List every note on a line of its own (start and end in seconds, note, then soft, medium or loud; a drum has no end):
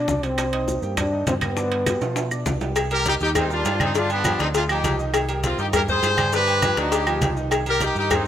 0.00 0.18 D4 medium
0.00 0.27 D4 loud
0.00 0.18 D5 medium
0.00 0.18 D6 medium
0.08 0.77 C2 medium
0.08 high bongo medium
0.08 low bongo medium
0.08 high conga medium
0.08 maracas medium
0.23 0.47 G3 medium
0.23 0.85 C4 loud
0.23 0.48 G4 medium
0.23 0.48 G5 medium
0.23 high bongo soft
0.23 high timbale medium
0.23 maracas soft
0.38 high bongo medium
0.38 high conga soft
0.38 high timbale medium
0.38 claves medium
0.38 maracas medium
0.53 0.77 D#4 medium
0.53 0.77 D#5 medium
0.53 0.78 D#6 medium
0.53 high conga soft
0.53 high timbale medium
0.68 high bongo medium
0.68 high conga medium
0.68 maracas medium
0.82 1.24 G2 medium
0.82 1.07 G3 medium
0.82 0.98 A#3 medium
0.82 1.07 G4 medium
0.82 1.07 G5 medium
0.82 high conga soft
0.82 maracas soft
0.97 1.26 D4 medium
0.97 high bongo medium
0.97 high conga soft
0.97 low conga medium
0.97 high timbale medium
0.97 claves medium
0.97 maracas medium
1.12 1.37 D#3 medium
1.12 1.37 D#4 medium
1.12 1.37 D#5 medium
1.12 high conga soft
1.27 1.96 G2 medium
1.27 1.35 C4 medium
1.27 high bongo medium
1.27 low bongo medium
1.27 high conga medium
1.27 high timbale medium
1.27 low timbale medium
1.27 maracas medium
1.41 1.54 G3 medium
1.41 2.28 B3 loud
1.41 1.54 G4 medium
1.41 1.54 G5 medium
1.41 high conga medium
1.41 high timbale medium
1.41 claves medium
1.41 maracas soft
1.57 1.81 D3 medium
1.57 1.81 D4 medium
1.57 1.81 D5 medium
1.57 high bongo medium
1.57 high conga soft
1.57 maracas medium
1.72 high bongo soft
1.72 high conga soft
1.72 high timbale medium
1.86 1.99 G3 medium
1.86 1.99 G4 medium
1.86 1.99 G5 medium
1.86 high bongo medium
1.86 high conga medium
1.86 high timbale medium
1.86 claves medium
1.86 maracas medium
2.01 2.43 B2 medium
2.01 2.26 F3 medium
2.01 2.26 F4 medium
2.01 2.26 F5 medium
2.01 high conga soft
2.01 high timbale medium
2.01 maracas soft
2.16 high bongo medium
2.16 high conga soft
2.16 high timbale medium
2.16 maracas medium
2.31 2.56 D4 medium
2.31 2.56 D5 medium
2.31 2.56 D6 medium
2.31 high bongo soft
2.31 high conga soft
2.31 claves medium
2.31 maracas medium
2.46 3.15 C2 medium
2.46 high bongo medium
2.46 low bongo medium
2.46 high conga medium
2.46 low timbale medium
2.46 maracas medium
2.61 2.73 G3 medium
2.61 2.74 G4 medium
2.61 2.74 G5 medium
2.61 high bongo soft
2.61 low timbale loud
2.61 maracas soft
2.76 cowbell loud
2.76 high conga soft
2.76 low agogo loud
2.76 claves medium
2.76 maracas medium
2.91 3.15 G3 medium
2.91 3.15 G4 medium
2.91 3.06 G4 medium
2.91 3.15 A#4 medium
2.91 3.05 A#4 loud
2.91 high conga soft
2.91 low agogo medium
2.91 maracas soft
3.06 3.14 D#4 medium
3.06 3.13 G4 loud
3.06 cowbell medium
3.06 high conga loud
3.06 low timbale medium
3.06 maracas medium
3.20 3.62 D#2 loud
3.20 3.33 D#3 medium
3.20 3.33 D#4 medium
3.20 3.29 D#4 medium
3.20 3.28 G4 loud
3.20 3.33 D#5 medium
3.20 high conga soft
3.20 maracas soft
3.35 3.48 G3 medium
3.35 3.50 C4 medium
3.35 3.50 D#4 medium
3.35 3.48 G4 medium
3.35 3.48 A#4 medium
3.35 cowbell loud
3.35 high conga soft
3.35 low conga medium
3.35 low agogo loud
3.35 claves medium
3.35 maracas medium
3.50 3.74 G3 medium
3.50 3.79 D4 medium
3.50 3.79 F4 medium
3.50 3.75 G4 medium
3.50 3.75 A#4 medium
3.50 high conga soft
3.50 maracas soft
3.65 4.34 G2 medium
3.65 cowbell medium
3.65 high conga soft
3.65 low timbale medium
3.65 low agogo medium
3.65 maracas medium
3.80 3.92 D3 medium
3.80 3.95 C4 medium
3.80 3.92 D4 medium
3.80 3.95 D#4 medium
3.80 3.92 D5 medium
3.80 cowbell medium
3.80 high conga medium
3.80 low agogo medium
3.80 claves medium
3.80 maracas soft
3.94 4.19 D3 medium
3.94 4.19 D4 medium
3.94 4.11 D4 medium
3.94 4.11 F4 loud
3.94 4.19 D5 medium
3.94 cowbell loud
3.94 high conga soft
3.94 maracas medium
4.10 4.39 B3 medium
4.10 4.38 D4 loud
4.10 high conga soft
4.10 low agogo medium
4.10 maracas soft
4.24 4.36 F3 medium
4.24 4.37 F4 medium
4.24 4.37 G4 medium
4.24 cowbell medium
4.24 high conga loud
4.24 low timbale medium
4.24 low agogo loud
4.24 claves medium
4.24 maracas medium
4.39 4.81 D2 loud
4.39 4.63 D3 medium
4.39 4.47 C4 medium
4.39 4.64 D4 medium
4.39 4.47 D#4 medium
4.39 4.64 D5 medium
4.39 cowbell medium
4.39 high conga soft
4.39 maracas soft
4.54 4.62 D4 medium
4.54 4.62 F4 medium
4.54 cowbell loud
4.54 high conga soft
4.54 low agogo medium
4.54 maracas medium
4.68 4.81 F3 medium
4.68 4.98 D#4 medium
4.68 4.81 F4 medium
4.68 4.81 G4 medium
4.68 4.97 G4 medium
4.68 high conga soft
4.68 low agogo loud
4.68 claves medium
4.68 maracas soft
4.84 5.53 C2 loud
4.84 4.96 F3 medium
4.84 4.96 F4 medium
4.84 4.96 G4 medium
4.84 cowbell medium
4.84 high conga loud
4.84 low timbale medium
4.84 low agogo medium
4.84 maracas medium
4.99 5.23 D#3 medium
4.99 5.23 D#4 medium
4.99 5.23 D#5 medium
4.99 maracas soft
5.14 cowbell loud
5.14 high conga soft
5.14 low agogo loud
5.14 claves medium
5.14 maracas medium
5.29 5.53 G3 medium
5.29 5.53 G4 medium
5.29 5.53 A#4 medium
5.29 high conga soft
5.29 low agogo medium
5.29 maracas soft
5.43 5.58 C4 medium
5.43 5.58 F4 medium
5.43 cowbell medium
5.43 high conga loud
5.43 low timbale medium
5.43 maracas medium
5.58 6.00 G2 loud
5.58 5.70 D#3 medium
5.58 5.71 D#4 medium
5.58 5.66 D#4 medium
5.58 5.66 G4 medium
5.58 5.71 D#5 medium
5.58 high conga soft
5.58 maracas soft
5.73 5.85 G3 medium
5.73 5.86 G4 medium
5.73 5.81 G4 medium
5.73 5.86 A#4 medium
5.73 5.81 A#4 medium
5.73 cowbell loud
5.73 high conga soft
5.73 low conga medium
5.73 low agogo loud
5.73 claves medium
5.73 maracas medium
5.88 6.12 G3 medium
5.88 6.12 G4 medium
5.88 6.30 G#4 medium
5.88 6.12 A#4 medium
5.88 6.30 C5 loud
5.88 high conga soft
5.88 low conga medium
5.88 maracas soft
6.03 6.72 G2 medium
6.03 cowbell medium
6.03 high conga soft
6.03 low timbale medium
6.03 low agogo medium
6.03 maracas medium
6.17 6.30 D3 medium
6.17 6.30 D4 medium
6.17 6.30 D5 medium
6.17 cowbell medium
6.17 high conga medium
6.17 low agogo loud
6.17 claves medium
6.17 maracas soft
6.33 6.57 D3 loud
6.33 6.57 D4 loud
6.33 6.75 G4 medium
6.33 6.75 B4 loud
6.33 6.57 D5 medium
6.33 cowbell medium
6.33 high conga soft
6.33 maracas medium
6.47 high conga soft
6.47 low agogo medium
6.47 maracas soft
6.62 6.74 F3 medium
6.62 6.75 F4 medium
6.62 6.75 G4 medium
6.62 cowbell medium
6.62 high conga loud
6.62 low timbale medium
6.62 low agogo loud
6.62 claves medium
6.62 maracas medium
6.77 7.18 D2 loud
6.77 7.02 D3 medium
6.77 7.02 D4 medium
6.77 7.34 D#4 medium
6.77 7.33 G4 medium
6.77 7.02 D5 medium
6.77 cowbell medium
6.77 high conga soft
6.77 maracas soft
6.92 cowbell loud
6.92 high conga soft
6.92 low agogo loud
6.92 maracas medium
7.07 7.19 F3 medium
7.07 7.19 F4 medium
7.07 7.19 G4 medium
7.07 high conga soft
7.07 low agogo loud
7.07 claves medium
7.07 maracas soft
7.21 7.90 C2 medium
7.21 7.34 F3 medium
7.21 7.34 F4 medium
7.21 7.34 G4 medium
7.21 cowbell medium
7.21 high conga loud
7.21 low timbale medium
7.21 low agogo medium
7.21 maracas medium
7.37 7.61 D#3 medium
7.37 7.61 D#4 medium
7.37 7.61 D#5 medium
7.37 maracas soft
7.51 cowbell loud
7.51 high conga soft
7.51 low agogo loud
7.51 claves medium
7.51 maracas medium
7.66 7.90 G3 medium
7.66 7.91 G4 medium
7.66 7.81 G4 medium
7.66 7.91 A#4 medium
7.66 7.81 A#4 loud
7.66 high conga soft
7.66 low agogo medium
7.66 maracas soft
7.81 7.96 D#4 medium
7.81 7.96 G4 loud
7.81 cowbell medium
7.81 high conga medium
7.81 low timbale medium
7.81 maracas medium
7.95 8.27 G2 loud
7.95 8.08 D#3 medium
7.95 8.08 D#4 medium
7.95 8.11 D#4 medium
7.95 8.11 G4 loud
7.95 8.08 D#5 medium
7.95 high conga soft
7.95 maracas soft
8.10 8.23 G3 medium
8.10 8.27 C4 medium
8.10 8.27 D#4 medium
8.10 8.23 G4 medium
8.10 8.23 A#4 medium
8.10 cowbell loud
8.10 high conga soft
8.10 low conga medium
8.10 low agogo loud
8.10 claves medium
8.10 maracas medium